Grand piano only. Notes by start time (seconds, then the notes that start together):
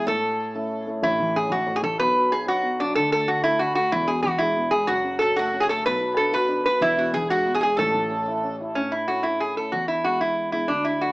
0.06 A2
0.55 A3 C#4 E4
0.87 A3 C#4 E4
1.03 A1 A2
1.20 E3
1.35 C#4
1.50 E3
1.67 A2
1.83 E3
1.99 B1 B2
2.15 F#3
2.31 B3
2.46 F#3
2.63 B2
2.80 F#3
2.97 D2 D3
3.12 A3
3.29 D3
3.44 A3
3.59 D3
3.76 A3
3.92 E1 E2
4.08 B2
4.24 E3
4.40 G#3
4.56 B3
4.73 G#3
4.89 F#1 F#2
5.04 C#3
5.20 F#3
5.37 A3
5.53 C#4
5.69 A3
5.86 B1 B2
6.01 F#3
6.17 D4
6.33 F#4
6.49 D4
6.65 F#4
6.81 E1 E2
6.98 B2
7.14 E3
7.30 G#3
7.46 B3
7.62 G#3
7.78 A1 A2
7.95 E3
8.11 C#4
8.28 E4
8.44 C#4
8.61 E4
8.76 A2
9.08 A3 C#4 E4
9.23 A3 C#4 E4
9.56 A3 C#4 E4
9.73 E2
10.04 G#3 B3 E4
10.20 G#3 B3 E4
10.52 G#3 B3 E4
10.68 D2
11.01 F#3 A3 D4